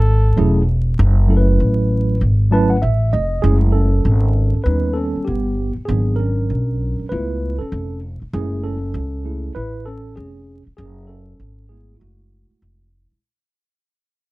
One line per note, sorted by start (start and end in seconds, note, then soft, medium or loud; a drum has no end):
0.00 0.34 G#1 loud
0.00 0.68 A4 medium
0.37 0.95 E1 medium
0.37 0.60 F#3 medium
0.37 0.60 A3 medium
0.37 0.61 C#4 medium
0.37 0.61 E4 medium
0.37 0.61 G#4 medium
0.99 1.57 F#1 loud
1.28 2.15 F#3 medium
1.28 2.16 A3 medium
1.28 2.16 C#4 medium
1.28 2.16 E4 medium
1.28 1.37 A4 medium
1.37 2.20 B4 medium
1.60 2.18 A1 medium
2.21 2.79 G#1 medium
2.51 2.75 F#3 medium
2.51 2.75 A3 medium
2.51 2.75 C#4 medium
2.51 2.75 E4 medium
2.51 2.76 B4 medium
2.51 2.69 A5 medium
2.70 2.81 F#5 medium
2.82 3.11 A1 medium
2.82 3.10 E5 medium
3.13 3.42 F1 medium
3.13 3.41 D#5 medium
3.42 4.02 F#1 loud
3.42 3.86 G#3 medium
3.42 3.87 A3 soft
3.42 3.58 C#4 medium
3.42 3.87 E4 medium
3.42 3.56 G#4 loud
3.72 4.62 C#4 medium
3.72 4.61 A4 medium
4.05 4.51 G#1 medium
4.54 muted upright bass stroke soft
4.64 5.12 D#2 loud
4.64 5.54 G3 medium
4.64 5.27 B3 soft
4.64 4.96 C#4 medium
4.64 4.95 D#4 medium
4.64 4.96 B4 medium
4.94 5.25 C#4 medium
4.94 5.27 A4 medium
5.16 muted upright bass stroke soft
5.25 5.74 G1 medium
5.25 5.74 B3 medium
5.25 5.72 G4 medium
5.76 muted upright bass stroke soft
5.85 6.47 G#1 loud
5.85 7.06 F#3 medium
5.85 6.17 B3 medium
5.85 7.07 D4 medium
5.85 6.18 G#4 medium
6.16 7.05 A#4 medium
6.20 7.07 C#4 medium
6.50 6.96 B1 medium
6.99 muted upright bass stroke soft
7.09 7.58 C#2 medium
7.09 7.54 A3 medium
7.09 7.54 B3 soft
7.09 7.57 E4 medium
7.09 7.55 F4 medium
7.09 7.61 B4 medium
7.59 8.00 C#4 medium
7.59 7.99 A4 medium
7.59 muted upright bass stroke soft
7.72 8.19 F1 medium
8.22 muted upright bass stroke soft
8.33 8.91 F#1 loud
8.33 8.77 G#3 medium
8.33 8.77 A3 soft
8.33 8.63 C#4 medium
8.33 8.77 E4 medium
8.33 8.65 G#4 medium
8.64 9.52 C#4 medium
8.64 9.52 A4 medium
8.94 9.52 C#2 medium
9.25 9.53 A3 soft
9.25 9.53 E4 soft
9.25 9.52 G#4 soft
9.55 10.14 A1 medium
9.55 9.84 E4 medium
9.55 9.87 B4 medium
9.85 10.15 C#4 medium
9.85 10.14 A4 medium
10.16 10.64 F1 medium
10.16 10.63 C#4 medium
10.16 10.62 G#4 medium
10.67 muted upright bass stroke soft
10.77 11.36 F#1 loud
10.77 11.07 C#4 medium
10.77 11.09 G#4 medium
11.07 11.66 C#4 medium
11.07 11.65 A4 medium
11.40 11.98 G#1 medium
11.69 13.19 G#3 medium
11.69 12.01 A3 soft
11.69 11.94 B3 medium
11.69 13.20 E4 medium
11.69 11.95 G#4 medium
11.94 12.00 F4 soft
12.00 12.48 F#1 medium
12.00 12.89 A3 soft
12.00 12.88 F#4 medium
12.50 muted upright bass stroke soft
12.62 13.09 F1 medium
13.12 muted upright bass stroke soft